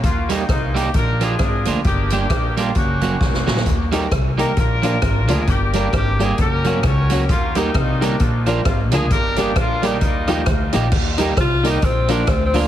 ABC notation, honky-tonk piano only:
X:1
M:4/4
L:1/8
Q:"Swing" 1/4=132
K:Eb
V:1 name="Honky-tonk piano"
z8 | z8 | z [EGB] z [EGB] z [DFB] z [DFB] | z [DGB] z [DGB] z [_D_GB] z [DGB] |
z [EGB] z [EGB] z [DFB] z [DFB] | z [DGB] z [DGB] z [EFG] z [EFG] | z [EGB] z [EGB] z [DFB] z [DFB] |]